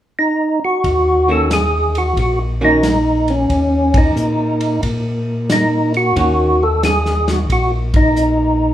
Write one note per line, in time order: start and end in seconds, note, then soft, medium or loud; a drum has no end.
0.19 0.59 D#4 medium
0.65 1.32 F#4 loud
0.84 2.13 D#2 medium
0.84 kick soft
0.84 ride soft
1.28 1.48 D#3 medium
1.28 1.49 A#3 medium
1.28 1.49 C#4 medium
1.28 1.49 F#4 medium
1.28 1.51 A4 medium
1.51 1.98 G#4 medium
1.51 snare medium
1.51 hi-hat pedal soft
1.51 ride medium
1.95 2.19 F#4 medium
1.95 ride soft
2.17 3.46 A#1 medium
2.17 2.39 F#4 medium
2.17 kick soft
2.17 ride soft
2.61 2.81 D#3 medium
2.61 2.81 A#3 medium
2.61 2.82 C#4 medium
2.61 3.32 D#4 loud
2.61 2.82 F#4 medium
2.83 snare medium
2.83 hi-hat pedal medium
2.83 ride medium
3.28 3.98 C#4 medium
3.28 ride soft
3.50 4.13 D#2 medium
3.50 kick soft
3.50 ride medium
3.94 4.81 D#4 medium
3.94 kick medium
3.94 ride medium
4.16 4.79 A#2 medium
4.16 hi-hat pedal medium
4.61 ride soft
4.83 6.12 A#2 medium
4.83 kick soft
4.83 ride medium
5.50 5.93 D#4 medium
5.50 snare medium
5.50 hi-hat pedal medium
5.50 ride medium
5.94 6.64 F#4 loud
5.94 ride soft
6.16 7.46 D#2 medium
6.16 6.56 D#3 soft
6.16 6.56 A#3 soft
6.16 6.56 C#4 soft
6.16 6.57 F#4 soft
6.16 kick soft
6.16 ride medium
6.63 6.83 A4 medium
6.83 7.30 G#4 medium
6.83 snare medium
6.83 hi-hat pedal medium
6.83 ride medium
7.06 snare soft
7.28 7.39 F#4 medium
7.28 snare soft
7.28 ride soft
7.50 8.74 A#1 medium
7.50 7.72 F#4 medium
7.50 kick soft
7.50 ride medium
7.94 8.74 D#4 loud
7.94 kick medium
7.94 ride medium
8.16 hi-hat pedal medium